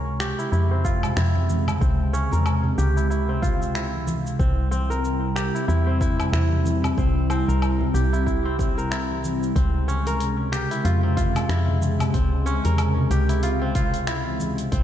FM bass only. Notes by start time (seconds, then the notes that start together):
Already playing: C#2
0.52 F2
1.17 F2
1.82 C#2
2.33 E2
2.78 C#2
4.40 C2
5.68 E2
6.33 E2
6.98 C2
7.48 C2
7.94 C2
9.56 C#2
10.85 F2
11.49 F2
12.14 C#2
12.65 E2
13.10 C#2
14.72 C2